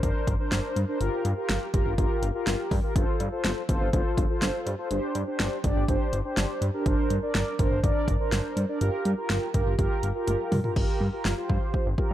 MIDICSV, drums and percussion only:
0, 0, Header, 1, 2, 480
1, 0, Start_track
1, 0, Key_signature, -2, "minor"
1, 0, Tempo, 487805
1, 990, Time_signature, 4, 2, 24, 8
1, 11941, End_track
2, 0, Start_track
2, 0, Title_t, "Drums"
2, 31, Note_on_c, 9, 36, 92
2, 31, Note_on_c, 9, 42, 67
2, 129, Note_off_c, 9, 36, 0
2, 129, Note_off_c, 9, 42, 0
2, 269, Note_on_c, 9, 36, 94
2, 271, Note_on_c, 9, 42, 74
2, 367, Note_off_c, 9, 36, 0
2, 370, Note_off_c, 9, 42, 0
2, 509, Note_on_c, 9, 38, 122
2, 510, Note_on_c, 9, 42, 84
2, 607, Note_off_c, 9, 38, 0
2, 609, Note_off_c, 9, 42, 0
2, 752, Note_on_c, 9, 42, 75
2, 850, Note_off_c, 9, 42, 0
2, 990, Note_on_c, 9, 42, 79
2, 1089, Note_off_c, 9, 42, 0
2, 1229, Note_on_c, 9, 42, 69
2, 1328, Note_off_c, 9, 42, 0
2, 1470, Note_on_c, 9, 38, 121
2, 1470, Note_on_c, 9, 42, 68
2, 1569, Note_off_c, 9, 38, 0
2, 1569, Note_off_c, 9, 42, 0
2, 1710, Note_on_c, 9, 42, 77
2, 1711, Note_on_c, 9, 36, 96
2, 1808, Note_off_c, 9, 42, 0
2, 1809, Note_off_c, 9, 36, 0
2, 1950, Note_on_c, 9, 36, 94
2, 1950, Note_on_c, 9, 42, 69
2, 2048, Note_off_c, 9, 36, 0
2, 2049, Note_off_c, 9, 42, 0
2, 2191, Note_on_c, 9, 42, 76
2, 2289, Note_off_c, 9, 42, 0
2, 2428, Note_on_c, 9, 38, 121
2, 2430, Note_on_c, 9, 42, 83
2, 2527, Note_off_c, 9, 38, 0
2, 2528, Note_off_c, 9, 42, 0
2, 2670, Note_on_c, 9, 36, 87
2, 2672, Note_on_c, 9, 46, 75
2, 2768, Note_off_c, 9, 36, 0
2, 2770, Note_off_c, 9, 46, 0
2, 2910, Note_on_c, 9, 36, 127
2, 2910, Note_on_c, 9, 42, 81
2, 3008, Note_off_c, 9, 36, 0
2, 3008, Note_off_c, 9, 42, 0
2, 3149, Note_on_c, 9, 42, 70
2, 3248, Note_off_c, 9, 42, 0
2, 3390, Note_on_c, 9, 38, 116
2, 3390, Note_on_c, 9, 42, 70
2, 3488, Note_off_c, 9, 38, 0
2, 3488, Note_off_c, 9, 42, 0
2, 3630, Note_on_c, 9, 42, 79
2, 3631, Note_on_c, 9, 36, 97
2, 3728, Note_off_c, 9, 42, 0
2, 3729, Note_off_c, 9, 36, 0
2, 3870, Note_on_c, 9, 36, 96
2, 3870, Note_on_c, 9, 42, 69
2, 3968, Note_off_c, 9, 36, 0
2, 3969, Note_off_c, 9, 42, 0
2, 4108, Note_on_c, 9, 36, 98
2, 4111, Note_on_c, 9, 42, 76
2, 4206, Note_off_c, 9, 36, 0
2, 4209, Note_off_c, 9, 42, 0
2, 4348, Note_on_c, 9, 38, 121
2, 4349, Note_on_c, 9, 42, 87
2, 4446, Note_off_c, 9, 38, 0
2, 4448, Note_off_c, 9, 42, 0
2, 4591, Note_on_c, 9, 42, 72
2, 4690, Note_off_c, 9, 42, 0
2, 4829, Note_on_c, 9, 42, 79
2, 4927, Note_off_c, 9, 42, 0
2, 5068, Note_on_c, 9, 42, 71
2, 5167, Note_off_c, 9, 42, 0
2, 5310, Note_on_c, 9, 38, 115
2, 5310, Note_on_c, 9, 42, 69
2, 5408, Note_off_c, 9, 42, 0
2, 5409, Note_off_c, 9, 38, 0
2, 5550, Note_on_c, 9, 42, 78
2, 5551, Note_on_c, 9, 36, 95
2, 5648, Note_off_c, 9, 42, 0
2, 5649, Note_off_c, 9, 36, 0
2, 5790, Note_on_c, 9, 36, 95
2, 5791, Note_on_c, 9, 42, 67
2, 5889, Note_off_c, 9, 36, 0
2, 5889, Note_off_c, 9, 42, 0
2, 6031, Note_on_c, 9, 42, 74
2, 6130, Note_off_c, 9, 42, 0
2, 6269, Note_on_c, 9, 38, 122
2, 6271, Note_on_c, 9, 42, 87
2, 6368, Note_off_c, 9, 38, 0
2, 6369, Note_off_c, 9, 42, 0
2, 6512, Note_on_c, 9, 42, 76
2, 6611, Note_off_c, 9, 42, 0
2, 6750, Note_on_c, 9, 36, 123
2, 6750, Note_on_c, 9, 42, 79
2, 6848, Note_off_c, 9, 36, 0
2, 6848, Note_off_c, 9, 42, 0
2, 6990, Note_on_c, 9, 42, 70
2, 7088, Note_off_c, 9, 42, 0
2, 7230, Note_on_c, 9, 38, 119
2, 7230, Note_on_c, 9, 42, 70
2, 7328, Note_off_c, 9, 42, 0
2, 7329, Note_off_c, 9, 38, 0
2, 7470, Note_on_c, 9, 42, 80
2, 7471, Note_on_c, 9, 36, 100
2, 7569, Note_off_c, 9, 36, 0
2, 7569, Note_off_c, 9, 42, 0
2, 7710, Note_on_c, 9, 36, 97
2, 7712, Note_on_c, 9, 42, 68
2, 7809, Note_off_c, 9, 36, 0
2, 7810, Note_off_c, 9, 42, 0
2, 7949, Note_on_c, 9, 36, 97
2, 7952, Note_on_c, 9, 42, 76
2, 8047, Note_off_c, 9, 36, 0
2, 8050, Note_off_c, 9, 42, 0
2, 8189, Note_on_c, 9, 38, 124
2, 8190, Note_on_c, 9, 42, 83
2, 8287, Note_off_c, 9, 38, 0
2, 8289, Note_off_c, 9, 42, 0
2, 8431, Note_on_c, 9, 42, 74
2, 8530, Note_off_c, 9, 42, 0
2, 8670, Note_on_c, 9, 42, 82
2, 8769, Note_off_c, 9, 42, 0
2, 8909, Note_on_c, 9, 42, 70
2, 9007, Note_off_c, 9, 42, 0
2, 9149, Note_on_c, 9, 38, 121
2, 9149, Note_on_c, 9, 42, 68
2, 9247, Note_off_c, 9, 38, 0
2, 9247, Note_off_c, 9, 42, 0
2, 9390, Note_on_c, 9, 42, 79
2, 9391, Note_on_c, 9, 36, 96
2, 9488, Note_off_c, 9, 42, 0
2, 9489, Note_off_c, 9, 36, 0
2, 9630, Note_on_c, 9, 36, 94
2, 9631, Note_on_c, 9, 42, 67
2, 9729, Note_off_c, 9, 36, 0
2, 9729, Note_off_c, 9, 42, 0
2, 9870, Note_on_c, 9, 42, 77
2, 9969, Note_off_c, 9, 42, 0
2, 10110, Note_on_c, 9, 48, 60
2, 10111, Note_on_c, 9, 42, 84
2, 10209, Note_off_c, 9, 42, 0
2, 10209, Note_off_c, 9, 48, 0
2, 10350, Note_on_c, 9, 45, 93
2, 10351, Note_on_c, 9, 46, 77
2, 10449, Note_off_c, 9, 45, 0
2, 10450, Note_off_c, 9, 46, 0
2, 10470, Note_on_c, 9, 43, 93
2, 10569, Note_off_c, 9, 43, 0
2, 10590, Note_on_c, 9, 36, 122
2, 10591, Note_on_c, 9, 49, 90
2, 10689, Note_off_c, 9, 36, 0
2, 10689, Note_off_c, 9, 49, 0
2, 11070, Note_on_c, 9, 38, 115
2, 11169, Note_off_c, 9, 38, 0
2, 11311, Note_on_c, 9, 36, 98
2, 11410, Note_off_c, 9, 36, 0
2, 11551, Note_on_c, 9, 36, 92
2, 11649, Note_off_c, 9, 36, 0
2, 11789, Note_on_c, 9, 36, 95
2, 11887, Note_off_c, 9, 36, 0
2, 11941, End_track
0, 0, End_of_file